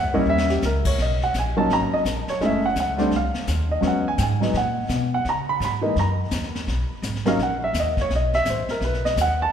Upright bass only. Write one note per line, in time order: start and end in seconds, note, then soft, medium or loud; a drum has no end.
0.03 0.15 C#2 medium
0.16 0.26 A#1 medium
0.26 0.61 D#2 medium
0.63 0.97 C#2 loud
0.99 1.33 B1 medium
1.34 1.69 A#1 medium
1.70 1.91 G#1 medium
1.92 muted upright bass stroke soft
2.05 2.26 A#1 medium
2.29 muted upright bass stroke soft
2.41 2.75 F#1 medium
2.76 3.11 C#2 medium
3.11 3.33 C2 medium
3.34 muted upright bass stroke soft
3.47 3.82 D#2 medium
3.82 4.17 E2 medium
4.18 4.53 G#2 loud
4.54 4.88 A#2 medium
4.89 5.24 B2 loud
5.25 5.60 C#3 medium
5.60 5.95 G#2 medium
5.96 6.31 F#2 medium
6.32 6.66 D#2 medium
6.67 6.89 B1 medium
6.91 muted upright bass stroke soft
7.02 7.37 G#1 loud
7.39 7.73 A#1 medium
7.74 8.08 D#2 medium
8.10 8.44 B1 medium
8.45 8.67 A1 loud
8.68 muted upright bass stroke soft
8.81 9.15 B1 loud
9.17 9.51 D#2 medium